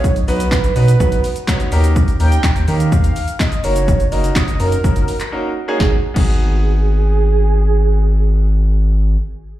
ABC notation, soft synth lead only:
X:1
M:4/4
L:1/16
Q:1/4=125
K:G#dor
V:1 name="Soft synth lead"
c2 B2 B2 B8 z2 | z2 =g4 e2 e4 d2 c2- | c2 d2 d2 A8 z2 | G z2 G12- G- |
G16 |]